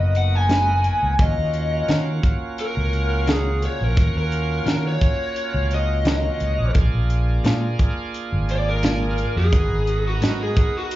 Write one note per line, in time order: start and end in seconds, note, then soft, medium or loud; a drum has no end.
0.00 0.88 F#1 medium
0.00 1.14 A#3 medium
0.00 1.15 B3 medium
0.00 1.16 D#4 medium
0.00 1.16 F#4 medium
0.00 0.13 D#5 medium
0.15 0.35 F#5 medium
0.15 closed hi-hat medium
0.35 1.18 G#5 medium
0.49 0.71 G#3 medium
0.49 0.71 D#4 medium
0.49 0.72 F#4 medium
0.49 0.72 B4 medium
0.49 snare loud
0.49 closed hi-hat medium
0.84 closed hi-hat medium
1.03 1.17 C#2 medium
1.18 1.35 D#2 medium
1.18 6.71 A#3 medium
1.18 6.71 C#4 medium
1.18 6.72 F4 medium
1.18 6.72 F#4 medium
1.18 1.88 D#5 loud
1.18 kick loud
1.18 closed hi-hat medium
1.38 1.82 D#2 medium
1.54 closed hi-hat medium
1.88 2.10 D#3 medium
1.88 2.19 D#3 medium
1.88 2.10 C#4 medium
1.88 2.11 F#4 medium
1.88 2.11 A#4 medium
1.88 snare loud
1.88 closed hi-hat medium
2.23 kick medium
2.23 closed hi-hat medium
2.58 3.30 A#4 medium
2.58 closed hi-hat medium
2.77 3.66 C#2 medium
2.93 closed hi-hat medium
3.27 3.49 D#3 medium
3.27 3.49 C#4 medium
3.27 3.50 F#4 medium
3.27 3.63 G#4 medium
3.27 3.50 A#4 medium
3.27 snare loud
3.27 closed hi-hat medium
3.62 3.84 C#5 medium
3.62 closed hi-hat medium
3.81 3.95 A#1 medium
3.81 4.16 A#4 medium
3.97 4.13 D#2 medium
3.97 kick loud
3.97 closed hi-hat medium
4.15 4.60 D#2 medium
4.15 4.84 A#4 medium
4.32 closed hi-hat medium
4.66 4.88 D#3 medium
4.66 4.97 D#3 medium
4.66 4.88 C#4 medium
4.66 4.89 F#4 medium
4.66 4.89 A#4 medium
4.66 snare loud
4.66 closed hi-hat medium
4.88 5.70 C#5 medium
5.01 kick medium
5.01 closed hi-hat medium
5.36 closed hi-hat medium
5.54 6.28 C#2 medium
5.71 6.74 D#5 medium
5.71 closed hi-hat medium
6.05 6.27 D#3 medium
6.05 6.27 C#4 medium
6.05 6.28 F#4 medium
6.05 6.28 A#4 medium
6.05 snare loud
6.05 closed hi-hat medium
6.40 6.57 C#2 medium
6.40 closed hi-hat medium
6.59 6.74 A#1 medium
6.73 6.91 A#1 medium
6.73 9.48 A#3 medium
6.73 9.49 D4 medium
6.73 9.49 F4 medium
6.73 9.50 G#4 medium
6.73 kick loud
6.73 closed hi-hat medium
6.94 7.38 A#1 medium
7.10 closed hi-hat medium
7.44 7.66 A#2 medium
7.44 7.75 A#2 medium
7.44 7.66 G#3 medium
7.44 7.67 D4 medium
7.44 7.67 F4 medium
7.44 snare loud
7.44 closed hi-hat medium
7.79 kick medium
7.79 closed hi-hat medium
8.14 closed hi-hat medium
8.32 9.22 G#1 medium
8.49 8.67 D5 medium
8.49 closed hi-hat medium
8.69 9.35 A#4 medium
8.83 9.05 A#2 medium
8.83 9.05 G#3 medium
8.83 9.05 D4 medium
8.83 9.05 F4 medium
8.83 snare loud
8.83 closed hi-hat medium
9.18 closed hi-hat medium
9.36 9.51 F2 medium
9.36 10.04 G#4 medium
9.52 9.68 G#1 medium
9.52 10.96 B3 medium
9.52 10.96 D#4 medium
9.52 10.96 F#4 medium
9.52 10.96 A#4 medium
9.52 kick loud
9.52 closed hi-hat medium
9.71 10.15 G#1 medium
9.87 closed hi-hat medium
10.07 10.40 F#4 medium
10.22 10.43 G#2 medium
10.22 10.52 G#2 medium
10.22 10.44 F#3 medium
10.22 10.44 B3 medium
10.22 10.44 D#4 medium
10.22 snare loud
10.22 closed hi-hat medium
10.42 10.75 G#4 medium
10.57 kick medium
10.57 closed hi-hat medium
10.77 10.96 F#4 medium
10.91 closed hi-hat medium